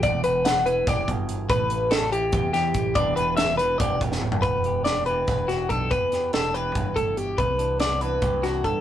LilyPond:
<<
  \new Staff \with { instrumentName = "Clean electric guitar" } { \time 7/8 \key e \minor \tempo 4 = 143 d''8 b'8 fis''8 b'8 d''8 r4 | b'4 a'8 g'4 g'4 | d''8 b'8 e''8 b'8 d''8 r4 | b'4 d''8 b'4 fis'8 a'8 |
b'4 a'8 b'4 a'8 g'8 | b'4 d''8 b'4 fis'8 a'8 | }
  \new Staff \with { instrumentName = "Clean electric guitar" } { \clef bass \time 7/8 \key e \minor << { r2 g'4. | r2 g'4. | <e d' g' b'>2 g'4. | r8 g'8 d'8 g'8 b'8 g'8 d'8 |
r8 g'8 d'8 g'2 | r8 d'8 b8 d'8 g'8 d'8 b8 | } \\ { <e, e>4. e4 b,4 | a,4. e4 e4 | e,4. e4 b,4 | e,4. e4. b,8 |
e,4. e8 g,8 a,8 b,8 | c4. e4. g,8 | } >> }
  \new Staff \with { instrumentName = "Fingered electric bass" } { \clef bass \time 7/8 \key e \minor e,,8 e,,4. e,,8 g,,4 | a,,2 e,4 a,,8 | e,,8 e,,4. e,,8 e,,4 | e,,2 e,,4 b,,8 |
e,4 e,,4 g,,8 g,,4 | c,2 c,4 g,8 | }
  \new DrumStaff \with { instrumentName = "Drums" } \drummode { \time 7/8 <hh bd>8 hh8 <hh sn>8 hh8 <hh bd sn>8 <hh bd>8 hh8 | <hh bd>8 hh8 <hh sn>8 hh8 <hh bd>8 <hh sn>8 <hh bd>8 | <hh bd>8 hh8 <hh sn>8 hh8 <hh bd>8 <hh bd>16 sn16 toml16 tomfh16 | <hh bd>8 hh8 <hh sn>8 hh8 <hh bd sn>8 <hh sn>8 <hh bd>8 |
<hh bd>8 <hh sn>8 <hh sn>8 hh8 <hh bd>8 <hh bd>8 hh8 | <hh bd>8 hh8 <hh sn>8 hh8 <hh bd>8 <hh sn>8 <hh bd>8 | }
>>